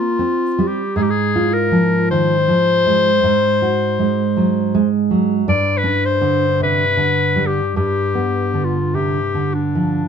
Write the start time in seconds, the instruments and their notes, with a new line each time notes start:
Already playing: nylon-string guitar A#3, clarinet F4
0.19 nylon-string guitar C4
0.58 nylon-string guitar G3
0.67 clarinet G4
0.96 nylon-string guitar G#2, clarinet G#4
1.02 clarinet G4
1.10 clarinet G#4
1.36 nylon-string guitar F4
1.54 clarinet A#4
1.72 nylon-string guitar F3
2.11 nylon-string guitar D#3, clarinet C5
2.48 nylon-string guitar F3
2.86 nylon-string guitar G#3
3.23 nylon-string guitar G#2
3.62 nylon-string guitar F#4
3.99 nylon-string guitar G#3
4.37 nylon-string guitar F#3
4.75 nylon-string guitar G#3
5.11 nylon-string guitar F#3
5.48 nylon-string guitar G2, clarinet D5
5.77 clarinet B4
5.84 nylon-string guitar D4
6.05 clarinet C5
6.21 nylon-string guitar D3
6.60 nylon-string guitar C3, clarinet B4
6.97 nylon-string guitar D3
7.36 nylon-string guitar G3
7.47 clarinet G4
7.76 nylon-string guitar G2, clarinet G4
8.15 nylon-string guitar B3
8.54 nylon-string guitar D3
8.65 clarinet F4
8.94 nylon-string guitar C3, clarinet G4
9.35 nylon-string guitar D3
9.54 clarinet D4
9.75 nylon-string guitar F3